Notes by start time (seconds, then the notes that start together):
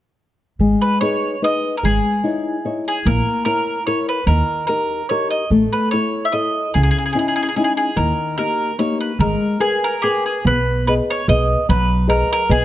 0.59 G#1 G#3
0.81 B4
1.01 D#4 G#4 B4 C#5
1.42 D#4 G#4 B4 D#5
1.77 A#4
1.83 G#1 G#3 G#4
2.24 D#4 E4 C#5
2.65 D#4 E4 C#5
2.88 G#4
3.06 A#1 A#3 A#4
3.45 E4 A#4 C#5
3.87 E4 A#4 C#5
4.09 B4
4.26 D#2 D#3 A#4
4.67 D#4 G4 A#4
5.09 D#4 G4 A#4 C#5
5.30 D#5
5.50 A1 A3
5.73 B4
5.91 E4 A4 C#5
6.25 E5
6.32 E4 A4 C#5 D#5
6.74 C#2 C#3 G#4
6.83 G#4
6.91 G#4
6.98 G#4
7.06 G#4
7.13 C#4 D#4 E4 G#4
7.19 G#4
7.28 G#4
7.36 G#4
7.43 G#4
7.49 G#4
7.56 C#4 D#4 E4 G#4
7.64 G#4
7.77 G#4
7.96 D#2 D#3 A#4
8.38 A#3 D#4 G4 A#4
8.79 A#3 D#4 G4 C#5
9.00 B4
9.19 G#1 G#3 A#4
9.60 G#4 A#4 B4
9.84 A#4
10.02 G4 G#4 A#4 B4
10.26 G#4
10.45 B1 B3 B4
10.87 G#4 B4 D#5
11.10 C#5
11.28 B1 G#4 B4 D#5
11.69 B1 F#3 B4
12.08 G#4 A#4 B4 D#5
12.33 A#4
12.49 B1 G#4 B4 D#5